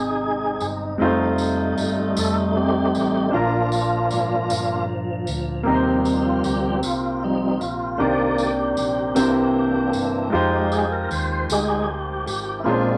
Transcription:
0.00 0.57 G#1 medium
0.00 1.01 C3 medium
0.00 0.95 G#3 medium
0.00 0.95 C4 medium
0.00 0.95 D#4 medium
0.00 0.96 D#4 medium
0.00 0.96 G4 medium
0.00 0.66 G#4 medium
0.00 1.00 C5 medium
0.61 0.97 G1 medium
0.61 tambourine soft
0.98 1.74 F1 loud
0.98 3.29 G3 medium
0.98 1.05 G#3 medium
0.98 3.30 A3 soft
0.98 3.29 C4 medium
0.98 3.29 D#4 medium
0.98 2.56 D#4 medium
0.98 3.30 F4 medium
0.98 3.30 C5 medium
1.04 3.31 A3 medium
1.38 tambourine soft
1.78 2.14 G1 medium
1.78 tambourine soft
2.17 2.90 F1 medium
2.17 2.36 A4 loud
2.17 tambourine medium
2.56 3.30 C4 medium
2.56 3.30 D#4 medium
2.56 3.36 G4 medium
2.95 3.30 A1 medium
2.95 tambourine soft
3.31 4.07 A#1 loud
3.31 4.46 A#2 medium
3.31 5.62 F3 medium
3.31 4.85 A#3 soft
3.31 5.61 D4 medium
3.31 4.85 D4 medium
3.31 5.62 F4 medium
3.31 4.85 F4 medium
3.35 5.63 A#4 medium
3.72 tambourine medium
4.11 4.47 G#1 medium
4.11 tambourine medium
4.50 5.24 G1 medium
4.50 tambourine medium
5.27 5.63 D2 medium
5.27 tambourine soft
5.63 6.40 D#2 medium
5.63 6.78 C3 medium
5.63 6.79 F3 soft
5.63 6.79 G3 soft
5.63 7.94 A#3 medium
5.63 7.98 A#3 medium
5.63 7.95 C4 medium
5.63 7.97 C4 medium
5.63 7.95 D#4 medium
5.63 7.97 G4 medium
5.63 7.96 G4 medium
5.67 6.79 C4 medium
5.67 5.73 A#4 medium
5.75 8.00 C5 medium
6.05 6.25 D#4 medium
6.05 tambourine soft
6.25 6.43 F4 medium
6.44 6.80 D2 medium
6.44 6.80 G4 medium
6.44 tambourine medium
6.83 7.57 C2 medium
6.83 7.23 F4 medium
6.83 tambourine medium
7.23 7.58 F3 soft
7.23 7.58 G3 soft
7.23 7.58 C4 soft
7.23 7.62 D#4 medium
7.59 7.97 A#1 medium
7.59 8.00 F4 medium
7.59 tambourine soft
7.98 8.73 C2 loud
7.98 9.12 C3 medium
7.98 8.51 D#3 soft
7.98 9.13 A#3 medium
7.98 10.30 A#3 medium
7.98 8.52 A#3 soft
7.98 10.30 C4 medium
7.98 9.14 D4 medium
7.98 9.16 D#4 medium
7.98 9.89 G4 medium
7.98 9.15 G4 medium
7.98 8.06 A#4 medium
7.98 9.15 D5 medium
7.98 8.52 D5 soft
8.07 9.16 C5 medium
8.38 tambourine medium
8.77 9.13 A#1 medium
8.77 tambourine medium
9.15 9.90 C2 medium
9.15 10.29 C3 medium
9.15 10.28 E3 soft
9.15 10.32 A#3 medium
9.15 10.29 A#3 soft
9.15 10.32 C4 medium
9.15 9.22 D4 soft
9.15 10.29 D4 medium
9.15 10.32 E4 medium
9.15 10.32 G4 medium
9.15 12.63 A#4 medium
9.15 10.33 C5 medium
9.15 tambourine medium
9.22 10.36 E4 medium
9.93 10.30 G1 medium
9.93 tambourine soft
10.30 11.06 F2 loud
10.30 12.64 F3 medium
10.30 12.61 G#3 medium
10.30 10.85 G#3 soft
10.30 12.61 D#4 medium
10.30 12.64 D#4 medium
10.30 10.85 D#4 soft
10.30 12.62 F4 medium
10.30 12.64 F4 medium
10.30 12.62 G4 medium
10.30 10.85 G4 soft
10.35 12.63 C5 medium
10.72 10.92 G#4 medium
10.72 tambourine soft
10.92 11.10 A#4 medium
11.11 11.46 D#2 medium
11.11 11.47 C5 medium
11.11 tambourine soft
11.49 12.23 D2 medium
11.49 11.86 G#3 soft
11.49 11.87 D#4 soft
11.49 11.86 G4 soft
11.49 11.90 G#4 medium
11.49 tambourine medium
11.89 12.25 G4 medium
12.26 12.63 G#1 medium
12.26 12.60 G4 medium
12.26 tambourine soft
12.60 12.97 A#3 medium
12.60 12.67 E4 soft
12.64 12.97 A#1 medium
12.64 12.97 A#2 medium
12.64 12.97 G#3 soft
12.64 12.97 A#3 medium
12.64 12.97 C4 soft
12.64 12.72 C#4 soft
12.64 12.97 D4 medium
12.64 12.97 D4 soft
12.64 12.97 F4 medium
12.64 12.97 G#4 medium
12.64 12.97 C5 medium
12.71 12.97 D4 medium

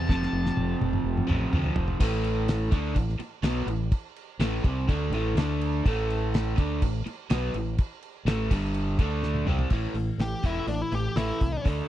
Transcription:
0.00 2.01 C4 medium
0.00 1.49 A5 loud
0.07 0.25 F1 medium
0.07 1.26 F2 medium
0.07 1.27 C3 loud
0.07 1.26 F3 loud
0.07 kick loud
0.07 snare medium
0.23 snare medium
0.33 0.49 F1 medium
0.46 snare medium
0.57 0.73 F1 medium
0.57 high tom medium
0.81 0.98 F1 loud
0.81 high tom medium
0.93 mid tom medium
1.04 1.21 F1 loud
1.17 mid tom medium
1.27 1.45 A1 medium
1.27 1.51 F2 medium
1.27 1.51 C3 medium
1.27 1.50 F3 medium
1.27 mid tom loud
1.52 1.69 D2 medium
1.52 1.99 F2 medium
1.52 2.00 C3 medium
1.52 mid tom loud
1.56 2.00 F3 medium
1.64 floor tom medium
1.76 1.93 F1 medium
1.76 floor tom loud
1.88 floor tom medium
2.00 2.68 A1 medium
2.00 2.71 A2 loud
2.00 2.72 E3 loud
2.00 2.71 A3 loud
2.00 kick loud
2.00 crash loud
2.00 crash medium
2.24 crash medium
2.48 snare loud
2.48 crash medium
2.71 2.94 D2 loud
2.71 2.95 D3 medium
2.71 2.95 A3 medium
2.71 2.96 D4 loud
2.71 kick loud
2.71 crash medium
2.95 3.18 A1 medium
2.95 3.15 A2 medium
2.95 3.15 E3 medium
2.95 kick loud
2.95 crash medium
3.09 snare soft
3.19 muted fingered electric bass stroke soft
3.19 muted overdriven electric guitar stroke medium
3.19 crash medium
3.43 3.66 B1 medium
3.43 3.67 B2 loud
3.43 3.68 F#3 loud
3.43 3.68 B3 loud
3.43 snare loud
3.43 crash medium
3.66 3.90 A1 medium
3.66 3.87 A2 medium
3.66 3.88 E3 medium
3.66 crash medium
3.92 kick loud
3.92 crash medium
4.16 crash medium
4.39 4.62 A1 medium
4.39 4.63 A2 medium
4.39 4.64 E3 loud
4.39 4.64 A3 loud
4.39 snare loud
4.39 crash medium
4.64 4.87 C2 loud
4.64 4.87 C3 loud
4.64 4.88 G3 loud
4.64 4.88 C4 loud
4.64 kick loud
4.64 crash medium
4.87 5.09 D2 medium
4.87 5.11 D3 medium
4.87 5.12 A3 loud
4.87 5.12 D4 loud
4.87 kick loud
4.87 crash medium
5.10 5.34 A1 loud
5.10 5.36 A2 medium
5.10 5.36 E3 loud
5.10 crash medium
5.14 5.37 A3 loud
5.35 5.80 D2 medium
5.35 5.84 D3 loud
5.35 5.85 A3 loud
5.35 5.85 D4 loud
5.35 snare loud
5.35 crash medium
5.61 crash medium
5.85 6.54 A1 loud
5.85 6.57 A2 loud
5.85 6.57 E3 loud
5.85 6.57 A3 loud
5.85 kick loud
5.85 crash medium
6.10 crash medium
6.34 snare loud
6.34 crash medium
6.57 6.80 D2 loud
6.57 6.80 D3 loud
6.57 6.81 A3 medium
6.57 6.81 D4 loud
6.57 kick loud
6.57 crash medium
6.82 7.04 A1 medium
6.82 7.01 A2 medium
6.82 7.01 E3 medium
6.82 kick medium
6.82 crash medium
7.06 muted fingered electric bass stroke soft
7.06 muted overdriven electric guitar stroke medium
7.06 crash medium
7.30 7.53 B1 medium
7.30 7.53 B2 medium
7.30 7.54 F#3 loud
7.30 7.54 B3 loud
7.30 snare loud
7.30 crash medium
7.54 7.76 A1 medium
7.54 7.74 A2 medium
7.54 7.74 E3 medium
7.54 crash medium
7.78 kick loud
7.78 crash medium
8.02 crash medium
8.25 8.48 A1 medium
8.25 8.50 A2 medium
8.25 8.50 E3 loud
8.25 8.50 A3 loud
8.25 snare loud
8.25 crash medium
8.50 8.95 G1 loud
8.50 8.98 G2 medium
8.50 8.98 D3 medium
8.50 8.99 G3 loud
8.50 kick loud
8.50 crash loud
8.74 crash medium
8.98 9.43 D2 medium
8.98 9.46 D3 medium
8.98 9.47 A3 loud
8.98 9.47 D4 loud
8.98 kick loud
8.98 crash medium
9.23 snare medium
9.34 high tom medium
9.45 9.69 C2 loud
9.45 9.70 C3 medium
9.45 9.71 G3 loud
9.45 9.71 C4 loud
9.45 mid tom loud
9.59 floor tom medium
9.70 9.85 A1 medium
9.70 9.94 A2 medium
9.70 9.94 E3 medium
9.70 9.94 A3 medium
9.70 kick loud
9.70 crash loud
9.94 10.09 A1 medium
9.94 10.17 A2 medium
9.94 10.17 E3 medium
9.94 open hi-hat medium
10.18 10.33 A1 medium
10.18 10.42 A2 medium
10.18 10.42 E3 medium
10.18 10.44 G4 medium
10.18 snare loud
10.18 open hi-hat medium
10.43 10.58 E1 medium
10.43 10.67 A2 medium
10.43 10.67 E3 medium
10.43 10.67 A3 medium
10.43 10.68 E4 medium
10.43 kick medium
10.43 open hi-hat medium
10.67 10.82 A1 medium
10.67 10.90 A2 medium
10.67 10.90 E3 medium
10.67 10.82 D4 medium
10.67 open hi-hat medium
10.82 10.95 E4 medium
10.92 11.07 A1 medium
10.92 11.14 A2 medium
10.92 11.14 E3 medium
10.92 11.17 G4 medium
10.92 open hi-hat medium
11.16 11.31 A1 medium
11.16 11.40 A2 medium
11.16 11.40 E3 medium
11.16 11.40 A3 loud
11.16 11.64 E4 medium
11.16 snare loud
11.16 open hi-hat medium
11.41 11.56 C2 medium
11.41 11.63 A2 medium
11.41 11.63 E3 medium
11.41 kick medium
11.41 open hi-hat medium
11.65 11.80 D2 medium
11.65 11.88 D3 medium
11.65 11.88 A3 medium
11.65 11.88 D4 medium
11.65 kick loud
11.65 open hi-hat medium

